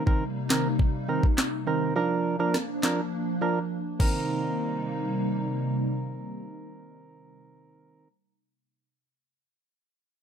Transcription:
0.00 1.94 C3 medium
0.00 1.94 G3 medium
0.00 1.92 A#3 medium
0.00 1.94 D#4 medium
0.06 0.24 D#3 medium
0.06 0.24 C4 medium
0.06 0.24 A#4 medium
0.06 kick medium
0.50 0.68 D#3 medium
0.50 0.68 C4 medium
0.50 0.68 A#4 medium
0.50 snare loud
0.50 clap medium
0.79 kick medium
1.08 1.26 D#3 medium
1.08 1.26 C4 medium
1.08 1.26 A#4 medium
1.23 kick medium
1.38 snare loud
1.38 clap medium
1.67 1.94 D#3 medium
1.67 1.94 C4 medium
1.67 1.94 A#4 medium
1.96 2.36 F3 medium
1.96 3.98 F3 medium
1.96 3.98 A#3 medium
1.96 3.98 D4 medium
1.96 2.36 D4 medium
1.96 2.36 A#4 loud
2.39 2.57 F3 medium
2.39 2.57 D4 medium
2.39 2.57 A#4 medium
2.54 cross-stick medium
2.54 snare medium
2.83 3.01 F3 medium
2.83 3.01 D4 medium
2.83 3.01 A#4 medium
2.83 snare loud
2.83 clap medium
3.41 3.59 F3 medium
3.41 3.59 D4 medium
3.41 3.59 A#4 medium
4.00 7.38 C3 medium
4.00 8.08 D#3 medium
4.00 7.38 G3 medium
4.00 7.38 A#3 medium
4.00 8.08 C4 medium
4.00 7.38 D#4 medium
4.00 8.08 A#4 medium
4.00 kick loud
4.00 crash medium

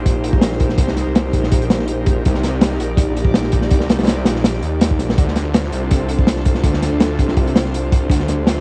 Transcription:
0.00 0.77 A#1 medium
0.00 5.14 D#4 medium
0.00 5.14 G4 medium
0.00 5.14 A#4 medium
0.00 2.22 C5 medium
0.06 kick loud
0.06 closed hi-hat medium
0.24 closed hi-hat medium
0.33 kick medium
0.41 snare loud
0.41 closed hi-hat medium
0.52 snare soft
0.60 kick loud
0.60 closed hi-hat medium
0.69 snare soft
0.78 1.04 C2 loud
0.78 kick loud
0.78 closed hi-hat medium
0.88 snare medium
0.97 snare soft
0.97 closed hi-hat medium
1.06 1.32 C2 medium
1.15 snare loud
1.15 closed hi-hat loud
1.33 2.23 A#1 medium
1.33 kick medium
1.33 closed hi-hat medium
1.43 snare soft
1.52 kick loud
1.52 closed hi-hat loud
1.62 closed hi-hat soft
1.70 snare loud
1.70 closed hi-hat medium
1.79 snare soft
1.88 closed hi-hat medium
2.06 kick loud
2.06 closed hi-hat medium
2.25 2.79 C2 loud
2.25 5.15 D5 medium
2.25 kick loud
2.25 closed hi-hat medium
2.34 snare soft
2.43 snare soft
2.43 closed hi-hat medium
2.61 snare loud
2.61 closed hi-hat medium
2.71 snare soft
2.80 3.70 A#1 medium
2.80 closed hi-hat medium
2.97 kick loud
2.97 closed hi-hat loud
3.17 closed hi-hat medium
3.25 kick medium
3.34 snare loud
3.34 closed hi-hat medium
3.43 snare soft
3.52 kick medium
3.52 closed hi-hat medium
3.62 snare soft
3.71 3.98 C2 loud
3.71 kick loud
3.71 closed hi-hat medium
3.80 snare soft
3.89 snare loud
3.89 closed hi-hat medium
3.99 4.25 C2 medium
3.99 snare medium
3.99 closed hi-hat medium
4.03 snare medium
4.03 closed hi-hat medium
4.07 snare loud
4.07 closed hi-hat medium
4.25 4.62 A#1 medium
4.25 snare loud
4.25 closed hi-hat medium
4.36 snare soft
4.44 snare loud
4.44 closed hi-hat medium
4.54 snare soft
4.63 5.01 D#2 medium
4.63 closed hi-hat medium
4.81 snare loud
4.81 closed hi-hat medium
4.91 kick medium
4.99 5.16 A#1 loud
4.99 snare soft
4.99 closed hi-hat medium
5.09 snare medium
5.18 5.71 D2 loud
5.18 8.60 D4 medium
5.18 8.60 F4 medium
5.18 8.07 A4 medium
5.18 8.60 C5 medium
5.18 kick loud
5.18 closed hi-hat medium
5.28 snare soft
5.36 snare soft
5.36 closed hi-hat medium
5.54 snare loud
5.54 closed hi-hat medium
5.64 snare soft
5.72 6.63 C2 medium
5.72 closed hi-hat medium
5.91 kick loud
5.91 closed hi-hat medium
6.09 closed hi-hat medium
6.19 kick medium
6.27 snare loud
6.27 closed hi-hat medium
6.36 snare soft
6.45 kick medium
6.45 closed hi-hat medium
6.55 snare soft
6.63 6.90 D2 loud
6.63 kick loud
6.63 closed hi-hat medium
6.74 snare soft
6.82 snare soft
6.82 closed hi-hat medium
6.92 7.17 D2 medium
7.00 snare loud
7.00 closed hi-hat medium
7.19 8.09 C2 medium
7.19 kick medium
7.19 closed hi-hat medium
7.28 snare soft
7.37 kick loud
7.37 closed hi-hat medium
7.47 closed hi-hat soft
7.56 snare loud
7.56 closed hi-hat medium
7.65 snare soft
7.74 closed hi-hat medium
7.92 kick loud
7.92 closed hi-hat medium
8.10 8.60 D2 loud
8.10 8.60 G4 medium
8.10 kick loud
8.10 closed hi-hat medium
8.20 snare soft
8.28 snare soft
8.28 closed hi-hat medium
8.47 snare loud
8.47 closed hi-hat medium
8.57 snare soft

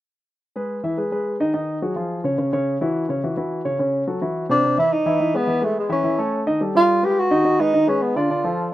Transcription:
0.56 0.79 G#3 medium
0.56 0.79 G#4 medium
0.56 0.79 B4 medium
0.83 0.95 E3 medium
0.83 0.95 E4 medium
0.83 0.96 E5 medium
0.97 1.09 G#3 soft
0.97 1.09 G#4 medium
0.97 1.09 B4 medium
1.12 1.35 G#3 medium
1.12 1.35 G#4 medium
1.12 1.35 B4 medium
1.40 1.52 D#3 medium
1.40 1.52 D#4 medium
1.40 1.52 D#5 medium
1.54 1.77 D#3 medium
1.54 1.77 D#4 medium
1.54 1.77 D#5 medium
1.82 1.94 F#3 medium
1.82 1.94 F#4 medium
1.82 1.94 G#4 medium
1.96 2.19 F3 medium
1.96 2.19 F4 medium
1.96 2.19 G#4 medium
2.24 2.36 C#3 medium
2.24 2.36 C#4 medium
2.24 2.36 C#5 medium
2.38 2.50 C#3 medium
2.38 2.50 C#4 medium
2.38 2.50 C#5 medium
2.53 2.76 C#3 medium
2.53 2.76 C#4 medium
2.53 2.76 C#5 medium
2.81 3.04 E3 medium
2.81 3.04 E4 medium
2.81 3.04 F#4 medium
3.09 3.20 C#3 medium
3.09 3.21 C#4 medium
3.09 3.21 C#5 medium
3.24 3.35 E3 medium
3.24 3.35 E4 medium
3.24 3.35 F#4 medium
3.37 3.60 E3 medium
3.37 3.60 E4 medium
3.37 3.60 F#4 medium
3.65 3.77 C#3 medium
3.65 3.77 C#4 medium
3.65 3.77 C#5 medium
3.79 4.02 C#3 medium
3.79 4.02 C#4 medium
3.79 4.03 C#5 medium
4.07 4.19 F#3 medium
4.07 4.19 F#4 medium
4.07 4.19 A4 medium
4.21 4.44 E3 medium
4.21 4.45 E4 medium
4.21 4.45 F#4 medium
4.49 4.61 C3 medium
4.49 4.61 C4 medium
4.49 4.76 D4 medium
4.49 4.61 C5 medium
4.64 4.75 C3 medium
4.64 4.75 C4 medium
4.64 4.76 C5 medium
4.78 4.89 E3 medium
4.78 4.89 E4 medium
4.78 4.94 E4 medium
4.78 4.90 E5 medium
4.93 5.37 D#4 loud
5.06 5.17 E3 medium
5.06 5.18 E4 medium
5.06 5.18 E5 medium
5.20 5.31 E3 medium
5.20 5.32 E4 medium
5.20 5.32 E5 medium
5.34 5.45 G#3 medium
5.34 5.65 B3 medium
5.34 5.46 G#4 medium
5.34 5.46 B4 medium
5.47 5.59 E3 medium
5.47 5.59 E4 medium
5.47 5.59 E5 medium
5.61 5.84 G#3 medium
5.61 5.77 A3 medium
5.61 5.85 G#4 medium
5.61 5.85 B4 medium
5.79 5.91 G#3 medium
5.89 6.01 E3 medium
5.89 6.43 C#4 medium
5.89 6.01 E4 medium
5.89 6.01 E5 medium
6.04 6.15 E3 medium
6.04 6.16 E4 medium
6.04 6.16 E5 medium
6.18 6.41 A3 medium
6.18 6.42 A4 medium
6.18 6.42 C#5 medium
6.46 6.58 D#3 medium
6.46 6.58 D#4 medium
6.46 6.58 D#5 medium
6.61 6.72 G3 medium
6.61 6.72 G4 medium
6.61 6.73 A4 medium
6.75 6.98 G3 medium
6.75 7.06 F4 loud
6.75 6.98 G4 medium
6.75 6.98 A4 medium
7.02 7.26 G#3 medium
7.02 7.20 G4 medium
7.02 7.26 G#4 medium
7.02 7.26 B4 medium
7.19 7.62 F#4 loud
7.31 7.42 D#3 medium
7.31 7.42 D#4 medium
7.31 7.42 D#5 medium
7.45 7.56 D#3 medium
7.45 7.56 D#4 medium
7.45 7.57 D#5 medium
7.59 7.71 G#3 medium
7.59 7.90 D#4 medium
7.59 7.71 G#4 medium
7.59 7.71 B4 medium
7.73 7.85 D#3 medium
7.73 7.85 D#4 medium
7.73 7.85 D#5 medium
7.87 8.10 G#3 medium
7.87 8.04 C#4 medium
7.87 8.10 G#4 medium
7.87 8.11 B4 medium
8.02 8.17 B3 medium
8.16 8.27 D3 medium
8.16 8.27 D4 medium
8.16 8.72 F4 medium
8.16 8.27 D5 medium
8.30 8.41 D3 medium
8.30 8.41 D4 medium
8.30 8.42 D5 medium
8.44 8.67 F3 medium
8.44 8.67 F4 medium
8.44 8.67 A4 medium

